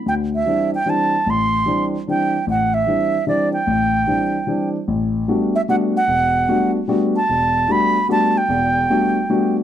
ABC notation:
X:1
M:3/4
L:1/8
Q:"Swing" 1/4=150
K:Dmix
V:1 name="Flute"
g e2 g a2 | c'3 z g2 | f e3 d g- | g4- g z |
[K:Clyd] z3 e f f- | f3 z2 a- | a2 b2 a g- | g4- g z |]
V:2 name="Grand piano"
D,,2 [E,G,CD] z [E,G,CD] z | A,,,2 [E,G,CD] z [E,G,CD] z | A,,,2 [E,G,CD] z [E,G,CD] z | A,,,2 [E,G,CD] z [E,G,CD] z |
[K:Clyd] A,,,2 [G,A,B,DF] z [G,A,B,DF] z | E,,,2 [G,A,B,DF] z [G,A,B,DF] z | E,,,2 [G,A,B,DF] z [G,A,B,DF] z | [E,,,E,,]2 [G,A,B,DF] z [G,A,B,DF] z |]